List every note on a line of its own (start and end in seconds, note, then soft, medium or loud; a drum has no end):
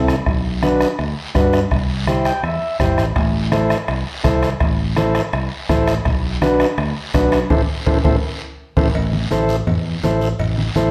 0.00 0.19 C2 medium
0.00 0.15 C4 medium
0.00 0.16 E4 medium
0.00 0.16 A4 medium
0.08 bombo rim medium
0.08 short guiro medium
0.26 0.84 B1 medium
0.26 bombo low medium
0.26 bombo rim medium
0.26 high conga soft
0.26 long guiro medium
0.63 0.88 D4 medium
0.63 0.88 F#4 medium
0.63 0.88 B4 medium
0.63 bombo rim medium
0.63 high conga medium
0.63 short guiro medium
0.81 bombo rim medium
0.81 short guiro medium
0.99 1.13 D2 medium
0.99 bombo rim medium
0.99 high conga soft
0.99 long guiro medium
1.35 1.64 G2 medium
1.35 1.60 D4 medium
1.35 1.60 F#4 medium
1.35 1.61 B4 medium
1.35 bombo low medium
1.35 bombo rim medium
1.35 high conga medium
1.35 short guiro medium
1.53 bombo rim medium
1.53 short guiro medium
1.71 2.29 C2 medium
1.71 bombo low medium
1.71 bombo rim medium
1.71 high conga soft
1.71 long guiro medium
2.07 2.33 E4 medium
2.07 2.33 G4 medium
2.07 2.33 C5 medium
2.07 bombo rim medium
2.07 high conga medium
2.07 short guiro medium
2.25 2.42 G5 medium
2.25 bombo rim medium
2.25 short guiro medium
2.43 2.58 E2 medium
2.43 2.77 E5 medium
2.43 bombo rim medium
2.43 high conga soft
2.43 long guiro medium
2.79 2.96 G1 medium
2.79 3.05 E4 medium
2.79 3.05 G4 medium
2.79 3.05 C5 medium
2.79 bombo low medium
2.79 bombo rim medium
2.79 high conga medium
2.79 short guiro medium
2.98 3.14 A1 medium
2.98 bombo rim medium
2.98 short guiro medium
3.16 3.74 A1 medium
3.16 bombo low medium
3.16 bombo rim medium
3.16 high conga soft
3.16 high timbale medium
3.16 long guiro medium
3.52 3.77 E4 medium
3.52 3.77 A4 medium
3.52 3.78 C5 medium
3.52 bombo rim medium
3.52 high conga medium
3.52 high timbale medium
3.52 short guiro medium
3.70 bombo rim medium
3.70 high timbale medium
3.70 short guiro medium
3.88 4.03 C2 medium
3.88 bombo rim medium
3.88 high conga soft
3.88 high timbale medium
3.88 long guiro medium
4.24 4.53 C2 medium
4.24 4.49 E4 medium
4.24 4.50 A4 medium
4.24 4.50 C5 medium
4.24 bombo low medium
4.24 bombo rim medium
4.24 high conga medium
4.24 high timbale medium
4.24 short guiro medium
4.43 bombo rim medium
4.43 high timbale medium
4.43 short guiro medium
4.60 5.19 A1 medium
4.60 bombo low medium
4.60 bombo rim medium
4.60 high conga soft
4.60 high timbale medium
4.60 long guiro medium
4.96 5.22 E4 medium
4.96 5.22 A4 medium
4.96 5.22 C5 medium
4.96 bombo rim medium
4.96 high conga medium
4.96 high timbale medium
4.96 short guiro medium
5.15 bombo rim medium
5.15 high timbale medium
5.15 short guiro medium
5.33 5.48 C2 medium
5.33 bombo rim medium
5.33 high conga soft
5.33 high timbale medium
5.33 long guiro medium
5.69 5.98 A1 medium
5.69 5.95 E4 medium
5.69 5.95 A4 medium
5.69 5.95 C5 medium
5.69 bombo low medium
5.69 bombo rim medium
5.69 high conga medium
5.69 high timbale medium
5.69 low timbale medium
5.69 short guiro medium
5.87 bombo rim medium
5.87 high timbale medium
5.87 short guiro medium
6.05 6.63 B1 medium
6.05 bombo low medium
6.05 bombo rim medium
6.05 high conga soft
6.05 high timbale medium
6.05 long guiro medium
6.42 6.67 D4 medium
6.42 6.67 F#4 medium
6.42 6.67 B4 medium
6.42 bombo rim medium
6.42 high conga medium
6.42 high timbale medium
6.42 short guiro medium
6.60 bombo rim medium
6.60 high timbale medium
6.60 short guiro medium
6.78 6.92 D2 medium
6.78 bombo rim medium
6.78 high conga soft
6.78 high timbale medium
6.78 long guiro medium
7.14 7.43 B1 medium
7.14 7.39 D4 medium
7.14 7.39 F#4 medium
7.14 7.40 B4 medium
7.14 bombo low medium
7.14 bombo rim medium
7.14 high conga medium
7.14 high timbale medium
7.14 low timbale medium
7.14 short guiro medium
7.32 bombo rim medium
7.32 high timbale medium
7.32 short guiro medium
7.50 7.64 A1 medium
7.50 7.62 E4 medium
7.50 7.62 A4 medium
7.50 7.62 C5 medium
7.50 bombo low loud
7.50 high conga medium
7.50 high timbale medium
7.50 long guiro medium
7.86 8.00 A1 medium
7.86 7.98 E4 loud
7.86 7.98 A4 medium
7.86 7.98 C5 medium
7.86 bombo low loud
7.86 high conga medium
7.86 high timbale loud
7.86 long guiro medium
8.04 8.18 A1 medium
8.04 8.16 E4 medium
8.04 8.16 A4 loud
8.04 8.16 C5 loud
8.04 bombo low medium
8.04 high conga medium
8.04 high timbale medium
8.04 long guiro medium
8.77 8.90 A1 medium
8.77 8.88 E4 medium
8.77 8.88 A4 medium
8.77 8.88 C5 medium
8.77 bombo low medium
8.77 high conga medium
8.77 high timbale medium
8.77 long guiro loud
8.95 9.24 A1 loud
8.95 cowbell loud
8.95 long guiro medium
9.13 high conga medium
9.31 9.60 A1 medium
9.31 9.56 E4 medium
9.31 9.56 A4 medium
9.31 9.57 C5 medium
9.31 cowbell medium
9.31 high conga medium
9.31 short guiro medium
9.49 short guiro medium
9.67 9.96 E2 medium
9.67 cowbell medium
9.67 low conga medium
9.67 long guiro medium
10.03 10.32 A1 medium
10.03 10.29 E4 medium
10.03 10.29 A4 medium
10.03 10.29 C5 medium
10.03 cowbell medium
10.03 high conga medium
10.03 low timbale medium
10.03 short guiro medium
10.21 short guiro medium
10.39 10.68 A1 medium
10.39 cowbell loud
10.39 low conga medium
10.39 long guiro medium
10.58 high conga medium
10.76 10.91 A1 loud
10.76 10.91 E4 medium
10.76 10.91 A4 medium
10.76 10.91 C5 medium
10.76 cowbell medium
10.76 high conga medium
10.76 short guiro medium